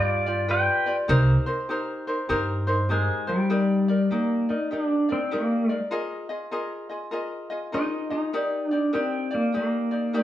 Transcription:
Already playing: upright bass G2, ukulele F4 G4 B4 D5, pedal steel guitar F4 D5
0.26 ukulele F4 G4 D5
0.48 ukulele F4 G4 B4 D5, pedal steel guitar B4 G5
0.86 ukulele F4 G4 D5
1.08 upright bass C2, ukulele D#4 G4 A#4 C5
1.46 ukulele D#4 A#4 C5
1.69 ukulele D#4 G4 A#4 C5
2.07 ukulele D#4 A#4 C5
2.29 upright bass G2, ukulele D#4 G4 A#4 C5
2.67 ukulele D#4 A#4 C5
2.89 pedal steel guitar G#3, ukulele D#4 G4 A#4 C5
3.27 pedal steel guitar G3, ukulele D#4 A#4 C5
3.50 ukulele D#4 G4 A#4 D5
3.88 ukulele D#4 A#4 D5
4.11 pedal steel guitar A#3, ukulele D#4 G4 A#4 D5
4.49 pedal steel guitar D#4, ukulele D#4 A#4 D5
4.71 pedal steel guitar D4, ukulele G4 A#4 D5
5.09 pedal steel guitar C4, ukulele D#4 A#4 D5
5.31 pedal steel guitar A#3, ukulele D#4 G4 A#4 D5
5.69 ukulele D#4 A#4 D5
5.91 ukulele F4 G#4 A#4 D#5
6.29 ukulele F4 G#4 D#5
6.51 ukulele F4 G#4 A#4 D#5
6.89 ukulele F4 G#4 D#5
7.11 ukulele F4 G#4 A#4 D#5
7.50 ukulele F4 G#4 D#5
7.72 pedal steel guitar D#4, ukulele F4 G#4 A#4 D#5
8.10 pedal steel guitar D#4, ukulele F4 G#4 D#5
8.33 ukulele D#4 G4 A#4 D5
8.68 pedal steel guitar D4, ukulele G4 D5
8.73 ukulele D#4
8.93 pedal steel guitar C4, ukulele D#4 G4 A#4 D5
9.31 pedal steel guitar A#3, ukulele D#4 G4 D5
9.52 pedal steel guitar A#3, ukulele D#4 G4 A#4 D5
9.91 ukulele D#4 G4 D5
10.13 ukulele D#4 G4 A#4 D5

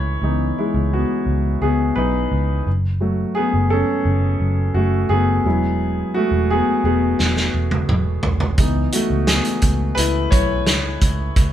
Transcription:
Already playing: picked electric bass C#2, grand piano B3 E4 G#4 B4 C#5
0.22 picked electric bass C#2, grand piano E3 B3 D#4
0.59 grand piano G#3 E4
0.74 picked electric bass C#2
0.93 grand piano B3 F#4
1.26 picked electric bass C#2
1.62 picked electric bass C#2, grand piano B3 G#4
1.96 picked electric bass B1, grand piano D#4 B4
2.32 picked electric bass C#2
2.67 picked electric bass F#1
3.01 grand piano F#3 A3 F#4
3.35 grand piano B3 G#4
3.54 picked electric bass F#1
3.70 grand piano C#4 A4
4.05 picked electric bass F#1
4.40 picked electric bass F#1
4.74 picked electric bass F#1, grand piano A3 F#4
5.09 picked electric bass F#1, grand piano B3 G#4
5.44 picked electric bass E1, grand piano F#3 G#3 E4
6.14 grand piano A3 F#4
6.32 picked electric bass E1
6.50 grand piano B3 G#4
6.84 picked electric bass E1, grand piano B3 G#4
7.19 picked electric bass E1, snare
7.36 snare
7.54 picked electric bass E1
7.71 high tom
7.89 picked electric bass E1, mid tom
8.23 picked electric bass E1, floor tom
8.40 floor tom
8.58 picked electric bass C#2, grand piano E3 B3 D#4, kick, closed hi-hat
8.92 grand piano A3 F#4, closed hi-hat
9.10 picked electric bass C#2
9.27 grand piano B3 G#4, snare, closed hi-hat
9.45 closed hi-hat
9.62 picked electric bass C#2, kick, closed hi-hat
9.95 picked electric bass C#2, grand piano E4 B4, closed hi-hat
10.31 picked electric bass B1, grand piano E4 C#5, kick, closed hi-hat
10.67 picked electric bass C#2, snare, closed hi-hat
11.01 picked electric bass C#2, kick, closed hi-hat
11.36 picked electric bass C#2, kick, closed hi-hat

